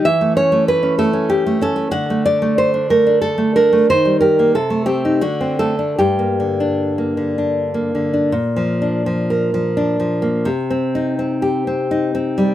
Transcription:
\new Staff \with { instrumentName = "Nylon-string guitar" } { \time 3/4 \key bes \major \tempo 4 = 86 << { e''8 cis''8 b'8 a'8 g'8 a'8 | fis''8 d''8 c''8 bes'8 a'8 bes'8 | c''8 bes'8 a'8 g'8 fis'8 a'8 | g'2~ g'8 r8 |
r2. | r2. | } \\ { e16 a16 cis'16 a8 cis'16 a16 cis'8 a16 cis'16 a16 | d16 a16 d'16 a8 d'16 a16 d'8 a16 d'16 a16 | ees16 g16 g'16 bes16 c16 a16 c'16 ees'16 d16 c'16 a16 d'16 | g,16 bes16 d16 d'8 bes16 d16 d'8 bes16 d16 d'16 |
\tuplet 3/2 { bes,8 f8 d'8 f8 bes'8 f8 d'8 f8 bes8 } | \tuplet 3/2 { c8 c'8 ees'8 c'8 g'8 c'8 ees'8 c'8 g8 } | } >> }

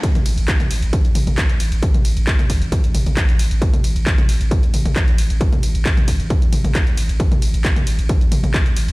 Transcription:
<<
  \new Staff \with { instrumentName = "Sub bass" } { \clef bass \time 4/4 \key c \major \tempo 4 = 134 r16 a,,16 a,,16 a,,16 r16 a,,16 a,,16 a,,16 r16 a,,16 a,,16 a,,16 r16 a,,16 a,,16 a,,16 | r16 a,,16 a,,16 a,,16 r16 a,,16 a,,16 a,,16 r16 a,,16 a,,16 a,,16 r16 a,,16 a,,16 a,,16 | r16 a,,16 a,,16 a,,16 r16 a,,16 a,,16 a,,16 r16 a,,16 a,,16 a,,16 r16 a,,16 a,,16 a,,16 | r16 a,,16 a,,16 a,,16 r16 a,,16 a,,16 a,,16 r16 a,,16 a,,16 a,,16 r16 a,,16 a,,16 a,,16 |
r16 a,,16 a,,16 a,,16 r16 a,,16 a,,16 a,,16 r16 a,,16 a,,16 a,,16 r16 a,,16 a,,16 a,,16 | }
  \new DrumStaff \with { instrumentName = "Drums" } \drummode { \time 4/4 <hh bd cymr>16 <hh toml>16 <hho cymr>16 hh16 <hc hh bd cymr>16 <hh toml>16 <hho cymr>16 hh16 <hh bd cymr>16 hh16 <hho cymr toml>16 <hh toml>16 <hc hh bd cymr>16 hh16 <hho cymr>16 hh16 | <hh bd cymr>16 <hh toml>16 <hho cymr>16 hh16 <hc hh bd cymr>16 <hh toml>16 <hho bd cymr>16 hh16 <hh bd cymr>16 hh16 <hho cymr toml>16 <hh toml>16 <hc hh bd cymr>16 hh16 <hho cymr>16 hh16 | <hh bd cymr>16 <hh toml>16 <hho cymr>16 hh16 <hc hh bd cymr>16 <hh toml>16 <hho cymr>16 hh16 <hh bd cymr>16 hh16 <hho cymr toml>16 <hh toml>16 <hc hh bd cymr>16 hh16 <hho cymr>16 hh16 | <hh bd cymr>16 <hh toml>16 <hho cymr>16 hh16 <hc hh bd cymr>16 <hh toml>16 <hho bd cymr>16 hh16 <hh bd cymr>16 hh16 <hho cymr toml>16 <hh toml>16 <hc hh bd cymr>16 hh16 <hho cymr>16 hh16 |
<hh bd cymr>16 <hh toml>16 <hho cymr>16 hh16 <hc hh bd cymr>16 <hh toml>16 <hho cymr>16 hh16 <hh bd cymr>16 hh16 <hho cymr toml>16 <hh toml>16 <hc hh bd cymr>16 hh16 <hho cymr>16 hh16 | }
>>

